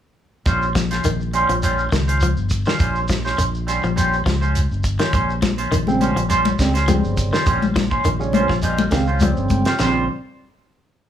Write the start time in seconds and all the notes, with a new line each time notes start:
0.46 A#1 G3 C#4 F4 C5, kick, closed hi-hat, shekere
0.62 shekere
0.75 F3, kick, snare, closed hi-hat, shekere
0.91 C#4 F4 C5, snare, closed hi-hat, shekere
1.04 A#1 D#3, closed hi-hat, shekere
1.20 shekere
1.33 G3 C#4 F4 C5, closed hi-hat, shekere
1.49 A#1 F3, closed hi-hat, shekere
1.63 G3 C#4 F4 C5, closed hi-hat, shekere
1.79 shekere
1.92 C#2 D#3, kick, snare, closed hi-hat, shekere
2.08 C#4 F4 C5, closed hi-hat, shekere
2.21 F3, closed hi-hat, shekere
2.37 G1, shekere
2.50 kick, closed hi-hat, shekere
2.66 D#3 C#4 F4 C5, snare, shekere
2.79 A#1 G3 C#4 F4 C5, kick, closed hi-hat, shekere
2.95 shekere
3.08 F3, kick, snare, closed hi-hat, shekere
3.25 C#4 F4 C5, snare, shekere
3.38 A#1, muted clean electric guitar stroke, closed hi-hat, shekere
3.55 shekere
3.67 G3 C#4 F4 C5, closed hi-hat, shekere
3.84 A#1 F3, shekere
3.96 G3 C#4 F4 C5, closed hi-hat, shekere
4.13 shekere
4.26 C#2 F3, kick, snare, closed hi-hat, shekere
4.41 C#4 F4 C5, shekere
4.55 closed hi-hat, shekere
4.71 G1, shekere
4.84 kick, closed hi-hat, shekere
4.99 D#3 C#4 F4 C5, snare, closed hi-hat, shekere
5.12 A#1 G3 C#4 C5, muted clean electric guitar stroke, kick, closed hi-hat, shekere
5.30 shekere
5.42 F3, kick, snare, closed hi-hat, high conga, shekere
5.58 C#4 F4 C5, closed hi-hat, shekere
5.71 A#1 D#3, closed hi-hat, shekere
5.87 C#3 G3 C4, high conga, shekere
6.00 G3 C#4 F4 C5, closed hi-hat, high conga, shekere
6.16 A#1 F3, closed hi-hat, shekere
6.29 G3 C#4 F4 C5, closed hi-hat, shekere
6.45 high conga, shekere
6.59 C#2 C#3 G3 C4, kick, snare, closed hi-hat, shekere
6.74 C#4 F4 C5, snare, closed hi-hat, shekere
6.88 C#3 F3 G3 C4, closed hi-hat, high conga, shekere
7.04 G1, shekere
7.17 kick, closed hi-hat, shekere
7.33 D#3 C#4 F4 C5, snare, shekere
7.46 A#1 G3 C#4 F4 C5, kick, closed hi-hat, shekere
7.62 high conga, shekere
7.75 F3, kick, snare, closed hi-hat, high conga, shekere
7.91 C#4 F4 C5, kick, shekere
8.04 A#1 D#3, closed hi-hat, shekere
8.19 C#3 G3 C#4, shekere
8.33 G3 C#4 F4 C5, closed hi-hat, high conga, shekere
8.49 A#1 F3, kick, snare, shekere
8.62 G3 C#4 F4 C5 D#5, closed hi-hat, shekere
8.78 high conga, shekere
8.91 C#2 C#3 D#3 G3 C4 F5, kick, snare, closed hi-hat, shekere
9.07 C#4 F4 C5, shekere
9.20 C#3 F3 G3 C4 G5, closed hi-hat, high conga, shekere
9.37 G1, shekere
9.49 G5, kick, closed hi-hat, high conga, shekere
9.65 C#4 F4 C5, muted clean electric guitar stroke, snare, closed hi-hat, shekere
9.79 A#1 C#3 G3 C4 F4 C5, muted clean electric guitar stroke, snare, china, low conga, shekere